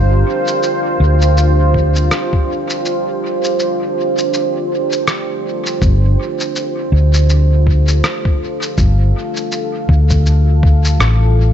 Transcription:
0.00 0.22 G1 medium
0.00 11.53 D4 medium
0.00 11.53 F4 medium
0.00 11.53 G4 medium
0.00 3.82 A#4 medium
0.00 7.47 C5 medium
0.47 shaker medium
0.63 shaker soft
1.00 2.08 D2 medium
1.22 shaker medium
1.37 shaker soft
1.74 kick medium
1.96 shaker soft
2.11 cross-stick medium
2.11 shaker soft
2.33 kick loud
2.70 shaker medium
2.86 shaker soft
3.44 shaker medium
3.57 11.53 A4 medium
3.57 shaker soft
4.18 shaker medium
4.34 shaker soft
4.92 shaker medium
5.08 cross-stick medium
5.08 shaker soft
5.66 shaker medium
5.82 6.15 G1 loud
5.82 kick loud
5.82 shaker soft
6.40 shaker medium
6.56 shaker soft
6.92 8.00 D2 medium
7.14 shaker medium
7.29 shaker soft
7.43 11.53 F5 medium
7.67 kick medium
7.88 shaker medium
8.04 cross-stick medium
8.04 shaker soft
8.25 kick loud
8.62 shaker medium
8.78 9.11 G1 loud
8.78 kick loud
8.78 shaker soft
9.37 shaker medium
9.52 shaker soft
9.89 10.97 D2 medium
9.89 kick medium
10.10 kick loud
10.10 shaker medium
10.26 shaker soft
10.63 kick loud
10.85 shaker medium
10.99 11.53 A1 medium
10.99 cross-stick medium
10.99 shaker soft

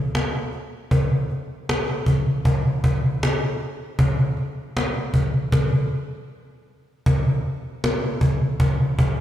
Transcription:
0.15 cajon slap loud
0.53 cajon slap soft
0.91 cajon bass medium
1.29 cajon slap soft
1.69 cajon slap medium
2.06 cajon bass medium
2.45 cajon bass medium
2.84 cajon bass medium
3.23 cajon slap loud
3.60 cajon slap soft
3.99 cajon bass loud
4.37 cajon slap soft
4.77 cajon slap medium
5.14 cajon bass medium
5.52 cajon bass loud
5.52 cajon slap medium
7.06 cajon bass loud
7.84 cajon slap loud
8.21 cajon bass medium
8.60 cajon bass loud
8.99 cajon bass loud

